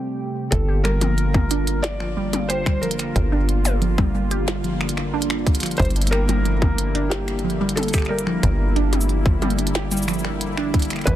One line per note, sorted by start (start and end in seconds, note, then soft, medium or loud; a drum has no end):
0.00 0.48 C3 medium
0.00 0.48 G3 medium
0.00 0.48 A3 medium
0.00 0.48 C4 medium
0.00 0.48 G4 medium
0.00 0.53 G5 medium
0.51 3.12 G1 medium
0.51 11.03 D3 medium
0.51 11.16 G3 medium
0.51 0.62 G3 medium
0.51 11.03 A#3 medium
0.51 5.75 F4 medium
0.51 0.85 A4 medium
0.51 kick loud
0.51 closed hi-hat medium
0.68 0.78 G4 loud
0.84 0.99 G3 medium
0.84 1.79 A#4 loud
0.84 finger snap medium
0.84 closed hi-hat soft
1.01 1.16 F3 medium
1.01 closed hi-hat medium
1.01 high tom medium
1.18 closed hi-hat soft
1.34 kick loud
1.34 high tom medium
1.51 1.65 D4 loud
1.51 closed hi-hat medium
1.67 closed hi-hat medium
1.83 2.45 D5 loud
1.83 finger snap medium
1.83 snare loud
1.83 closed hi-hat medium
2.00 2.15 F3 medium
2.00 finger snap soft
2.17 2.27 G3 loud
2.33 2.43 G3 medium
2.33 closed hi-hat medium
2.33 high tom medium
2.49 2.59 G4 loud
2.49 2.83 C5 loud
2.49 closed hi-hat medium
2.66 2.81 G3 loud
2.66 finger snap medium
2.66 kick loud
2.81 2.97 F3 medium
2.81 3.44 A#4 medium
2.81 closed hi-hat medium
2.91 closed hi-hat medium
2.99 finger snap soft
2.99 closed hi-hat medium
3.16 5.76 G1 medium
3.16 kick loud
3.16 closed hi-hat medium
3.32 3.47 D4 loud
3.49 closed hi-hat soft
3.65 closed hi-hat medium
3.65 high tom medium
3.65 shaker medium
3.82 3.96 F3 medium
3.82 closed hi-hat soft
3.98 4.08 G3 loud
3.98 kick loud
3.98 high tom medium
4.15 4.24 G3 medium
4.31 4.41 G4 loud
4.31 closed hi-hat medium
4.48 4.62 G3 loud
4.48 snare loud
4.48 closed hi-hat medium
4.64 4.79 F3 medium
4.64 closed hi-hat soft
4.81 finger snap medium
4.89 closed hi-hat medium
4.97 finger snap medium
5.14 5.28 D4 loud
5.22 closed hi-hat medium
5.30 finger snap medium
5.47 kick loud
5.47 closed hi-hat medium
5.55 closed hi-hat medium
5.60 5.78 F3 medium
5.60 finger snap soft
5.60 closed hi-hat medium
5.63 closed hi-hat medium
5.66 closed hi-hat soft
5.71 closed hi-hat soft
5.77 8.40 G1 medium
5.77 5.89 G3 loud
5.77 5.85 C5 loud
5.77 kick loud
5.77 closed hi-hat soft
5.80 11.16 E4 medium
5.80 closed hi-hat soft
5.82 closed hi-hat soft
5.85 closed hi-hat soft
5.90 closed hi-hat soft
5.96 6.06 G3 medium
5.96 closed hi-hat soft
6.02 closed hi-hat medium
6.07 7.14 A#4 loud
6.07 closed hi-hat medium
6.12 6.22 G4 loud
6.12 finger snap medium
6.12 closed hi-hat soft
6.29 6.43 G3 loud
6.29 closed hi-hat medium
6.29 high tom medium
6.45 6.60 F3 medium
6.45 closed hi-hat soft
6.62 kick loud
6.62 high tom medium
6.78 closed hi-hat medium
6.95 7.09 D4 loud
6.95 closed hi-hat medium
7.10 7.78 G4 medium
7.10 finger snap soft
7.10 snare loud
7.10 closed hi-hat medium
7.28 finger snap soft
7.28 closed hi-hat soft
7.39 closed hi-hat soft
7.44 7.59 F3 medium
7.50 closed hi-hat soft
7.61 7.70 G3 loud
7.69 closed hi-hat medium
7.76 7.87 G3 medium
7.76 8.07 A4 loud
7.76 closed hi-hat medium
7.76 high tom medium
7.83 closed hi-hat medium
7.88 closed hi-hat soft
7.94 8.03 G4 loud
7.94 finger snap medium
7.94 kick loud
7.94 closed hi-hat soft
7.94 shaker medium
7.98 finger snap medium
7.98 closed hi-hat soft
8.02 finger snap soft
8.02 closed hi-hat soft
8.06 8.71 A#4 medium
8.06 finger snap soft
8.10 8.25 G3 loud
8.19 closed hi-hat medium
8.27 8.41 F3 medium
8.27 finger snap soft
8.43 11.04 G1 medium
8.43 kick loud
8.43 closed hi-hat medium
8.76 8.91 D4 loud
8.76 closed hi-hat soft
8.93 closed hi-hat medium
8.93 high tom medium
9.01 shaker medium
9.09 closed hi-hat soft
9.26 9.40 F3 medium
9.26 kick loud
9.42 9.52 G3 loud
9.42 closed hi-hat soft
9.42 high tom medium
9.50 closed hi-hat soft
9.59 9.68 G3 medium
9.59 closed hi-hat soft
9.67 closed hi-hat medium
9.75 9.85 G4 loud
9.75 snare loud
9.75 closed hi-hat medium
9.91 10.06 G3 loud
9.91 closed hi-hat soft
9.91 shaker medium
9.97 shaker medium
10.02 shaker medium
10.08 10.23 F3 medium
10.08 finger snap medium
10.08 shaker soft
10.14 shaker soft
10.19 shaker soft
10.25 finger snap medium
10.41 closed hi-hat medium
10.57 10.72 D4 loud
10.57 finger snap medium
10.74 kick loud
10.74 closed hi-hat soft
10.79 closed hi-hat soft
10.82 closed hi-hat medium
10.85 closed hi-hat soft
10.90 finger snap soft
10.90 closed hi-hat medium
10.93 finger snap soft
10.96 finger snap soft
10.96 closed hi-hat soft
10.99 finger snap soft
11.01 finger snap soft
11.01 closed hi-hat soft
11.04 11.16 A1 medium
11.04 11.16 B2 medium
11.04 11.16 C3 medium
11.04 11.16 E3 medium
11.04 11.16 B4 loud
11.04 finger snap soft
11.04 kick loud
11.04 closed hi-hat medium